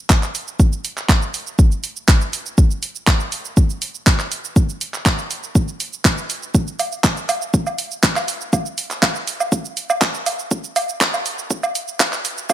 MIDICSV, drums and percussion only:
0, 0, Header, 1, 2, 480
1, 0, Start_track
1, 0, Tempo, 495868
1, 578, Time_signature, 4, 2, 24, 8
1, 12133, End_track
2, 0, Start_track
2, 0, Title_t, "Drums"
2, 96, Note_on_c, 9, 39, 115
2, 96, Note_on_c, 9, 82, 78
2, 97, Note_on_c, 9, 36, 115
2, 193, Note_off_c, 9, 39, 0
2, 193, Note_off_c, 9, 82, 0
2, 194, Note_off_c, 9, 36, 0
2, 221, Note_on_c, 9, 39, 35
2, 221, Note_on_c, 9, 82, 46
2, 318, Note_off_c, 9, 39, 0
2, 318, Note_off_c, 9, 82, 0
2, 338, Note_on_c, 9, 46, 89
2, 338, Note_on_c, 9, 82, 57
2, 434, Note_off_c, 9, 46, 0
2, 434, Note_off_c, 9, 82, 0
2, 462, Note_on_c, 9, 82, 43
2, 559, Note_off_c, 9, 82, 0
2, 577, Note_on_c, 9, 36, 111
2, 578, Note_on_c, 9, 82, 77
2, 673, Note_off_c, 9, 36, 0
2, 675, Note_off_c, 9, 82, 0
2, 703, Note_on_c, 9, 82, 44
2, 800, Note_off_c, 9, 82, 0
2, 819, Note_on_c, 9, 46, 101
2, 819, Note_on_c, 9, 82, 50
2, 915, Note_off_c, 9, 46, 0
2, 915, Note_off_c, 9, 82, 0
2, 944, Note_on_c, 9, 39, 37
2, 944, Note_on_c, 9, 82, 43
2, 1041, Note_off_c, 9, 39, 0
2, 1041, Note_off_c, 9, 82, 0
2, 1057, Note_on_c, 9, 36, 118
2, 1059, Note_on_c, 9, 39, 110
2, 1059, Note_on_c, 9, 82, 73
2, 1154, Note_off_c, 9, 36, 0
2, 1155, Note_off_c, 9, 39, 0
2, 1155, Note_off_c, 9, 82, 0
2, 1183, Note_on_c, 9, 82, 41
2, 1280, Note_off_c, 9, 82, 0
2, 1298, Note_on_c, 9, 46, 87
2, 1298, Note_on_c, 9, 82, 53
2, 1395, Note_off_c, 9, 46, 0
2, 1395, Note_off_c, 9, 82, 0
2, 1422, Note_on_c, 9, 82, 44
2, 1519, Note_off_c, 9, 82, 0
2, 1537, Note_on_c, 9, 36, 116
2, 1537, Note_on_c, 9, 82, 76
2, 1633, Note_off_c, 9, 36, 0
2, 1634, Note_off_c, 9, 82, 0
2, 1663, Note_on_c, 9, 82, 43
2, 1760, Note_off_c, 9, 82, 0
2, 1777, Note_on_c, 9, 46, 96
2, 1777, Note_on_c, 9, 82, 55
2, 1874, Note_off_c, 9, 46, 0
2, 1874, Note_off_c, 9, 82, 0
2, 1902, Note_on_c, 9, 82, 43
2, 1998, Note_off_c, 9, 82, 0
2, 2017, Note_on_c, 9, 36, 127
2, 2017, Note_on_c, 9, 39, 120
2, 2017, Note_on_c, 9, 82, 80
2, 2113, Note_off_c, 9, 39, 0
2, 2113, Note_off_c, 9, 82, 0
2, 2114, Note_off_c, 9, 36, 0
2, 2143, Note_on_c, 9, 82, 42
2, 2239, Note_off_c, 9, 82, 0
2, 2257, Note_on_c, 9, 46, 99
2, 2257, Note_on_c, 9, 82, 55
2, 2354, Note_off_c, 9, 46, 0
2, 2354, Note_off_c, 9, 82, 0
2, 2382, Note_on_c, 9, 82, 42
2, 2479, Note_off_c, 9, 82, 0
2, 2496, Note_on_c, 9, 36, 113
2, 2497, Note_on_c, 9, 82, 75
2, 2593, Note_off_c, 9, 36, 0
2, 2593, Note_off_c, 9, 82, 0
2, 2621, Note_on_c, 9, 82, 42
2, 2718, Note_off_c, 9, 82, 0
2, 2736, Note_on_c, 9, 46, 100
2, 2736, Note_on_c, 9, 82, 53
2, 2832, Note_off_c, 9, 46, 0
2, 2832, Note_off_c, 9, 82, 0
2, 2860, Note_on_c, 9, 82, 43
2, 2957, Note_off_c, 9, 82, 0
2, 2975, Note_on_c, 9, 39, 122
2, 2975, Note_on_c, 9, 82, 74
2, 2976, Note_on_c, 9, 36, 124
2, 3072, Note_off_c, 9, 39, 0
2, 3072, Note_off_c, 9, 82, 0
2, 3073, Note_off_c, 9, 36, 0
2, 3100, Note_on_c, 9, 82, 40
2, 3197, Note_off_c, 9, 82, 0
2, 3215, Note_on_c, 9, 46, 95
2, 3215, Note_on_c, 9, 82, 50
2, 3311, Note_off_c, 9, 46, 0
2, 3311, Note_off_c, 9, 82, 0
2, 3340, Note_on_c, 9, 82, 42
2, 3436, Note_off_c, 9, 82, 0
2, 3455, Note_on_c, 9, 82, 72
2, 3456, Note_on_c, 9, 36, 116
2, 3552, Note_off_c, 9, 82, 0
2, 3553, Note_off_c, 9, 36, 0
2, 3580, Note_on_c, 9, 82, 41
2, 3677, Note_off_c, 9, 82, 0
2, 3695, Note_on_c, 9, 46, 105
2, 3695, Note_on_c, 9, 82, 49
2, 3792, Note_off_c, 9, 46, 0
2, 3792, Note_off_c, 9, 82, 0
2, 3821, Note_on_c, 9, 82, 42
2, 3918, Note_off_c, 9, 82, 0
2, 3936, Note_on_c, 9, 36, 121
2, 3937, Note_on_c, 9, 39, 121
2, 3937, Note_on_c, 9, 82, 73
2, 4033, Note_off_c, 9, 36, 0
2, 4033, Note_off_c, 9, 39, 0
2, 4033, Note_off_c, 9, 82, 0
2, 4061, Note_on_c, 9, 39, 37
2, 4061, Note_on_c, 9, 82, 39
2, 4158, Note_off_c, 9, 39, 0
2, 4158, Note_off_c, 9, 82, 0
2, 4178, Note_on_c, 9, 46, 96
2, 4178, Note_on_c, 9, 82, 54
2, 4275, Note_off_c, 9, 46, 0
2, 4275, Note_off_c, 9, 82, 0
2, 4303, Note_on_c, 9, 82, 44
2, 4399, Note_off_c, 9, 82, 0
2, 4416, Note_on_c, 9, 36, 115
2, 4418, Note_on_c, 9, 82, 71
2, 4513, Note_off_c, 9, 36, 0
2, 4515, Note_off_c, 9, 82, 0
2, 4543, Note_on_c, 9, 82, 39
2, 4640, Note_off_c, 9, 82, 0
2, 4658, Note_on_c, 9, 46, 101
2, 4658, Note_on_c, 9, 82, 49
2, 4755, Note_off_c, 9, 46, 0
2, 4755, Note_off_c, 9, 82, 0
2, 4782, Note_on_c, 9, 39, 35
2, 4782, Note_on_c, 9, 82, 43
2, 4879, Note_off_c, 9, 39, 0
2, 4879, Note_off_c, 9, 82, 0
2, 4896, Note_on_c, 9, 36, 117
2, 4896, Note_on_c, 9, 39, 110
2, 4896, Note_on_c, 9, 82, 74
2, 4992, Note_off_c, 9, 36, 0
2, 4993, Note_off_c, 9, 39, 0
2, 4993, Note_off_c, 9, 82, 0
2, 5021, Note_on_c, 9, 82, 41
2, 5117, Note_off_c, 9, 82, 0
2, 5136, Note_on_c, 9, 46, 92
2, 5136, Note_on_c, 9, 82, 52
2, 5233, Note_off_c, 9, 46, 0
2, 5233, Note_off_c, 9, 82, 0
2, 5261, Note_on_c, 9, 82, 42
2, 5358, Note_off_c, 9, 82, 0
2, 5375, Note_on_c, 9, 36, 119
2, 5376, Note_on_c, 9, 82, 72
2, 5472, Note_off_c, 9, 36, 0
2, 5473, Note_off_c, 9, 82, 0
2, 5500, Note_on_c, 9, 82, 40
2, 5597, Note_off_c, 9, 82, 0
2, 5616, Note_on_c, 9, 46, 104
2, 5616, Note_on_c, 9, 82, 50
2, 5713, Note_off_c, 9, 46, 0
2, 5713, Note_off_c, 9, 82, 0
2, 5741, Note_on_c, 9, 82, 40
2, 5838, Note_off_c, 9, 82, 0
2, 5856, Note_on_c, 9, 36, 121
2, 5856, Note_on_c, 9, 39, 117
2, 5856, Note_on_c, 9, 82, 73
2, 5952, Note_off_c, 9, 39, 0
2, 5952, Note_off_c, 9, 82, 0
2, 5953, Note_off_c, 9, 36, 0
2, 5981, Note_on_c, 9, 82, 40
2, 6077, Note_off_c, 9, 82, 0
2, 6096, Note_on_c, 9, 46, 92
2, 6096, Note_on_c, 9, 82, 51
2, 6193, Note_off_c, 9, 46, 0
2, 6193, Note_off_c, 9, 82, 0
2, 6222, Note_on_c, 9, 82, 41
2, 6319, Note_off_c, 9, 82, 0
2, 6336, Note_on_c, 9, 36, 114
2, 6336, Note_on_c, 9, 82, 76
2, 6433, Note_off_c, 9, 36, 0
2, 6433, Note_off_c, 9, 82, 0
2, 6462, Note_on_c, 9, 82, 43
2, 6559, Note_off_c, 9, 82, 0
2, 6577, Note_on_c, 9, 46, 96
2, 6577, Note_on_c, 9, 77, 49
2, 6577, Note_on_c, 9, 82, 49
2, 6674, Note_off_c, 9, 46, 0
2, 6674, Note_off_c, 9, 77, 0
2, 6674, Note_off_c, 9, 82, 0
2, 6701, Note_on_c, 9, 82, 40
2, 6798, Note_off_c, 9, 82, 0
2, 6816, Note_on_c, 9, 36, 119
2, 6816, Note_on_c, 9, 39, 110
2, 6816, Note_on_c, 9, 82, 72
2, 6913, Note_off_c, 9, 36, 0
2, 6913, Note_off_c, 9, 39, 0
2, 6913, Note_off_c, 9, 82, 0
2, 6940, Note_on_c, 9, 82, 43
2, 7037, Note_off_c, 9, 82, 0
2, 7056, Note_on_c, 9, 46, 93
2, 7056, Note_on_c, 9, 77, 78
2, 7056, Note_on_c, 9, 82, 53
2, 7153, Note_off_c, 9, 46, 0
2, 7153, Note_off_c, 9, 77, 0
2, 7153, Note_off_c, 9, 82, 0
2, 7181, Note_on_c, 9, 82, 45
2, 7277, Note_off_c, 9, 82, 0
2, 7296, Note_on_c, 9, 36, 114
2, 7297, Note_on_c, 9, 82, 77
2, 7393, Note_off_c, 9, 36, 0
2, 7394, Note_off_c, 9, 82, 0
2, 7421, Note_on_c, 9, 77, 50
2, 7421, Note_on_c, 9, 82, 42
2, 7518, Note_off_c, 9, 77, 0
2, 7518, Note_off_c, 9, 82, 0
2, 7536, Note_on_c, 9, 46, 102
2, 7536, Note_on_c, 9, 82, 50
2, 7632, Note_off_c, 9, 46, 0
2, 7632, Note_off_c, 9, 82, 0
2, 7661, Note_on_c, 9, 82, 42
2, 7758, Note_off_c, 9, 82, 0
2, 7776, Note_on_c, 9, 36, 127
2, 7776, Note_on_c, 9, 39, 116
2, 7776, Note_on_c, 9, 82, 77
2, 7873, Note_off_c, 9, 36, 0
2, 7873, Note_off_c, 9, 39, 0
2, 7873, Note_off_c, 9, 82, 0
2, 7902, Note_on_c, 9, 39, 36
2, 7902, Note_on_c, 9, 77, 74
2, 7902, Note_on_c, 9, 82, 41
2, 7998, Note_off_c, 9, 39, 0
2, 7998, Note_off_c, 9, 77, 0
2, 7998, Note_off_c, 9, 82, 0
2, 8017, Note_on_c, 9, 46, 92
2, 8017, Note_on_c, 9, 82, 55
2, 8114, Note_off_c, 9, 46, 0
2, 8114, Note_off_c, 9, 82, 0
2, 8142, Note_on_c, 9, 82, 42
2, 8239, Note_off_c, 9, 82, 0
2, 8256, Note_on_c, 9, 36, 111
2, 8257, Note_on_c, 9, 77, 53
2, 8257, Note_on_c, 9, 82, 77
2, 8353, Note_off_c, 9, 36, 0
2, 8354, Note_off_c, 9, 77, 0
2, 8354, Note_off_c, 9, 82, 0
2, 8382, Note_on_c, 9, 82, 45
2, 8479, Note_off_c, 9, 82, 0
2, 8497, Note_on_c, 9, 46, 95
2, 8497, Note_on_c, 9, 82, 53
2, 8594, Note_off_c, 9, 46, 0
2, 8594, Note_off_c, 9, 82, 0
2, 8622, Note_on_c, 9, 39, 34
2, 8622, Note_on_c, 9, 82, 44
2, 8718, Note_off_c, 9, 39, 0
2, 8718, Note_off_c, 9, 82, 0
2, 8736, Note_on_c, 9, 36, 110
2, 8737, Note_on_c, 9, 39, 112
2, 8737, Note_on_c, 9, 77, 77
2, 8737, Note_on_c, 9, 82, 72
2, 8833, Note_off_c, 9, 36, 0
2, 8834, Note_off_c, 9, 39, 0
2, 8834, Note_off_c, 9, 77, 0
2, 8834, Note_off_c, 9, 82, 0
2, 8862, Note_on_c, 9, 82, 42
2, 8959, Note_off_c, 9, 82, 0
2, 8978, Note_on_c, 9, 46, 88
2, 8978, Note_on_c, 9, 82, 55
2, 9075, Note_off_c, 9, 46, 0
2, 9075, Note_off_c, 9, 82, 0
2, 9103, Note_on_c, 9, 77, 55
2, 9103, Note_on_c, 9, 82, 45
2, 9199, Note_off_c, 9, 77, 0
2, 9199, Note_off_c, 9, 82, 0
2, 9216, Note_on_c, 9, 36, 110
2, 9217, Note_on_c, 9, 82, 77
2, 9313, Note_off_c, 9, 36, 0
2, 9314, Note_off_c, 9, 82, 0
2, 9342, Note_on_c, 9, 82, 43
2, 9439, Note_off_c, 9, 82, 0
2, 9457, Note_on_c, 9, 46, 92
2, 9457, Note_on_c, 9, 82, 56
2, 9554, Note_off_c, 9, 46, 0
2, 9554, Note_off_c, 9, 82, 0
2, 9581, Note_on_c, 9, 77, 82
2, 9581, Note_on_c, 9, 82, 47
2, 9678, Note_off_c, 9, 77, 0
2, 9678, Note_off_c, 9, 82, 0
2, 9696, Note_on_c, 9, 36, 118
2, 9696, Note_on_c, 9, 39, 118
2, 9696, Note_on_c, 9, 82, 76
2, 9793, Note_off_c, 9, 36, 0
2, 9793, Note_off_c, 9, 39, 0
2, 9793, Note_off_c, 9, 82, 0
2, 9820, Note_on_c, 9, 82, 42
2, 9917, Note_off_c, 9, 82, 0
2, 9935, Note_on_c, 9, 46, 97
2, 9935, Note_on_c, 9, 77, 53
2, 9935, Note_on_c, 9, 82, 59
2, 10032, Note_off_c, 9, 46, 0
2, 10032, Note_off_c, 9, 77, 0
2, 10032, Note_off_c, 9, 82, 0
2, 10061, Note_on_c, 9, 82, 44
2, 10157, Note_off_c, 9, 82, 0
2, 10175, Note_on_c, 9, 82, 83
2, 10176, Note_on_c, 9, 36, 111
2, 10272, Note_off_c, 9, 82, 0
2, 10273, Note_off_c, 9, 36, 0
2, 10300, Note_on_c, 9, 82, 48
2, 10397, Note_off_c, 9, 82, 0
2, 10416, Note_on_c, 9, 46, 98
2, 10416, Note_on_c, 9, 77, 83
2, 10416, Note_on_c, 9, 82, 54
2, 10513, Note_off_c, 9, 46, 0
2, 10513, Note_off_c, 9, 77, 0
2, 10513, Note_off_c, 9, 82, 0
2, 10542, Note_on_c, 9, 82, 45
2, 10639, Note_off_c, 9, 82, 0
2, 10656, Note_on_c, 9, 36, 117
2, 10657, Note_on_c, 9, 39, 117
2, 10657, Note_on_c, 9, 82, 78
2, 10753, Note_off_c, 9, 36, 0
2, 10754, Note_off_c, 9, 39, 0
2, 10754, Note_off_c, 9, 82, 0
2, 10781, Note_on_c, 9, 77, 54
2, 10781, Note_on_c, 9, 82, 45
2, 10878, Note_off_c, 9, 77, 0
2, 10878, Note_off_c, 9, 82, 0
2, 10897, Note_on_c, 9, 46, 87
2, 10897, Note_on_c, 9, 82, 56
2, 10994, Note_off_c, 9, 46, 0
2, 10994, Note_off_c, 9, 82, 0
2, 11022, Note_on_c, 9, 82, 46
2, 11119, Note_off_c, 9, 82, 0
2, 11136, Note_on_c, 9, 82, 85
2, 11137, Note_on_c, 9, 36, 108
2, 11233, Note_off_c, 9, 36, 0
2, 11233, Note_off_c, 9, 82, 0
2, 11261, Note_on_c, 9, 77, 80
2, 11261, Note_on_c, 9, 82, 43
2, 11358, Note_off_c, 9, 77, 0
2, 11358, Note_off_c, 9, 82, 0
2, 11377, Note_on_c, 9, 46, 97
2, 11377, Note_on_c, 9, 82, 55
2, 11474, Note_off_c, 9, 46, 0
2, 11474, Note_off_c, 9, 82, 0
2, 11501, Note_on_c, 9, 82, 47
2, 11598, Note_off_c, 9, 82, 0
2, 11616, Note_on_c, 9, 39, 118
2, 11616, Note_on_c, 9, 77, 57
2, 11616, Note_on_c, 9, 82, 86
2, 11617, Note_on_c, 9, 36, 118
2, 11713, Note_off_c, 9, 39, 0
2, 11713, Note_off_c, 9, 77, 0
2, 11713, Note_off_c, 9, 82, 0
2, 11714, Note_off_c, 9, 36, 0
2, 11741, Note_on_c, 9, 39, 35
2, 11741, Note_on_c, 9, 82, 44
2, 11837, Note_off_c, 9, 39, 0
2, 11837, Note_off_c, 9, 82, 0
2, 11856, Note_on_c, 9, 46, 90
2, 11856, Note_on_c, 9, 82, 58
2, 11953, Note_off_c, 9, 46, 0
2, 11953, Note_off_c, 9, 82, 0
2, 11982, Note_on_c, 9, 82, 46
2, 12078, Note_off_c, 9, 82, 0
2, 12095, Note_on_c, 9, 77, 86
2, 12095, Note_on_c, 9, 82, 87
2, 12097, Note_on_c, 9, 36, 114
2, 12133, Note_off_c, 9, 36, 0
2, 12133, Note_off_c, 9, 77, 0
2, 12133, Note_off_c, 9, 82, 0
2, 12133, End_track
0, 0, End_of_file